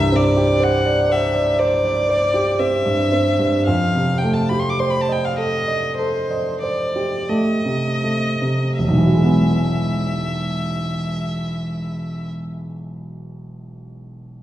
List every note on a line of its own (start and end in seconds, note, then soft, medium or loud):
0.00 3.62 C2 soft
0.00 0.27 G2 soft
0.00 0.17 E5 medium
0.12 0.50 C4 soft
0.12 0.65 D5 medium
0.37 0.75 G4 soft
0.60 0.99 C5 soft
0.60 1.13 F#5 medium
0.85 1.24 D5 soft
1.09 1.49 C5 soft
1.09 1.61 E5 soft
1.34 1.74 D5 soft
1.59 1.99 C5 soft
1.59 2.61 D5 medium
1.84 2.24 D5 soft
2.09 2.49 C5 soft
2.34 2.75 G4 soft
2.59 3.01 C4 soft
2.59 3.66 E5 medium
2.85 3.28 G2 soft
3.12 3.56 C4 soft
3.39 3.67 G2 soft
3.67 8.75 F2 soft
3.67 4.20 F5 medium
3.95 4.39 C3 soft
4.18 4.35 G5 soft
4.23 4.67 A3 soft
4.34 4.50 A5 soft
4.49 4.96 G4 soft
4.49 4.61 B5 soft
4.59 4.71 C6 soft
4.70 4.81 D6 soft
4.79 5.25 C5 soft
4.79 4.92 C6 soft
4.90 5.02 B5 soft
5.01 5.14 A5 soft
5.09 5.55 D#5 soft
5.09 5.26 G5 soft
5.25 5.37 F5 soft
5.38 5.85 A4 soft
5.38 5.97 D#5 medium
5.68 6.17 D#5 soft
5.98 6.49 A4 soft
5.98 6.60 C5 soft
6.31 6.81 D#5 soft
6.63 7.15 C5 soft
6.63 7.31 D5 soft
6.96 7.50 G4 soft
7.29 7.87 A3 soft
7.29 8.78 D#5 soft
7.65 8.26 C3 soft
8.04 8.64 A3 soft
8.42 8.79 C3 soft
8.78 12.30 E1 soft
8.78 12.29 E5 soft
8.88 12.39 B1 soft
8.97 12.48 E3 soft
9.06 12.57 F#3 soft
9.15 12.66 G#3 soft
9.24 12.75 B3 soft